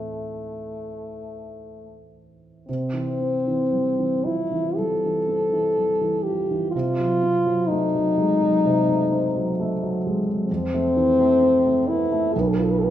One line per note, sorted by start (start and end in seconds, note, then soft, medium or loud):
0.00 2.71 A2 soft
0.00 2.70 E3 soft
0.00 2.13 A3 soft
0.00 2.70 A3 soft
0.00 2.70 C4 soft
2.68 4.74 C3 soft
2.68 4.26 C4 medium
2.94 3.36 E3 soft
3.20 3.61 C4 soft
3.47 3.88 E3 soft
3.72 4.14 G3 soft
3.99 4.42 E3 soft
4.25 4.52 F3 soft
4.25 4.78 E4 medium
4.52 4.93 E3 soft
4.77 5.19 G3 soft
4.77 6.24 A4 medium
5.05 5.43 E3 soft
5.28 5.67 C4 soft
5.53 5.91 E3 soft
5.78 6.16 G3 soft
6.01 6.40 E3 soft
6.23 6.50 F3 soft
6.23 6.71 G4 medium
6.51 6.74 E3 soft
6.72 8.61 C3 soft
6.72 7.69 F4 medium
6.99 7.37 F#3 soft
7.23 7.61 C4 soft
7.46 7.84 F#3 soft
7.68 8.08 A3 soft
7.68 10.03 D#4 medium
7.95 8.32 F#3 soft
8.18 8.41 G#3 soft
8.42 8.79 F#3 soft
8.65 10.45 C3 medium
8.88 9.26 A3 soft
9.12 9.49 C4 soft
9.36 9.73 F#3 soft
9.60 9.96 A3 soft
9.83 10.18 F#3 soft
10.06 10.28 G#3 soft
10.29 10.50 F#3 soft
10.47 12.31 F2 soft
10.47 11.89 C4 medium
10.74 11.10 A3 soft
10.97 11.33 E3 soft
11.20 11.56 A3 soft
11.42 11.79 C4 soft
11.66 12.02 A3 soft
11.88 12.12 B3 soft
11.88 12.35 E4 medium
12.12 12.35 A3 soft
12.34 12.90 B1 medium
12.34 12.42 A4 medium
12.40 12.50 B4 medium
12.48 12.57 A4 medium
12.56 12.90 F4 soft
12.56 12.65 B4 medium
12.64 12.73 A4 medium
12.71 12.80 B4 medium
12.79 12.90 B3 soft
12.79 12.86 A4 medium
12.85 12.90 B4 medium